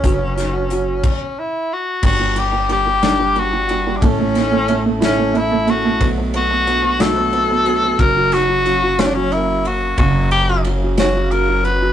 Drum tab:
CC |---x--|x-----|------|------|
RD |------|-xxxxx|xxxxxx|xxxxxx|
HH |xxx---|------|------|------|
SD |-o----|---o--|-o-o--|---o--|
BD |o--o--|o-----|o-----|o-----|

CC |------|------|
RD |xxxxxx|xxxxxx|
HH |------|------|
SD |-o-o--|---o--|
BD |o-----|o-----|